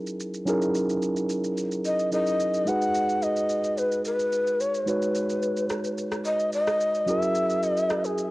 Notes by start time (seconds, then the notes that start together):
Already playing: F#3 C#4 D#4 E4 G#4 A#4
0.07 shaker
0.20 shaker
0.34 shaker
0.46 F#3 C#4 D#4 E4 G#4 A#4, shaker
0.62 shaker
0.75 shaker
0.89 shaker
1.02 shaker
1.16 shaker
1.30 shaker
1.44 shaker
1.58 shaker
1.72 shaker
1.85 D#5, shaker
1.99 shaker
2.12 F#3 C#4 D#4 E4 G#4 A#4 D#5, shaker
2.27 shaker
2.40 shaker
2.54 shaker
2.66 G#3 D#4 F#4 G#4 B4 F#5, shaker
2.82 shaker
2.95 shaker
3.10 shaker
3.22 D#5, shaker
3.37 shaker
3.50 shaker
3.64 shaker
3.78 B4, shaker
3.92 shaker
4.05 B4, shaker
4.19 shaker
4.32 shaker
4.47 shaker
4.60 C#5, shaker
4.74 shaker
4.86 G#3 D#4 F#4 B4 C#5, shaker
5.02 shaker
5.15 shaker
5.30 shaker
5.43 shaker
5.57 shaker
5.70 cross-stick, shaker
5.84 shaker
5.98 shaker
6.12 cross-stick, shaker
6.25 D#5, shaker
6.40 shaker
6.53 D#5, shaker
6.67 cross-stick, shaker
6.81 shaker
6.95 shaker
7.06 F#3 C#4 E4 F#4 G#4 A#4 D#5, shaker
7.19 E5, shaker
7.35 shaker
7.50 shaker
7.63 D#5, shaker
7.77 shaker
7.90 cross-stick, shaker
8.04 G#4, shaker
8.18 shaker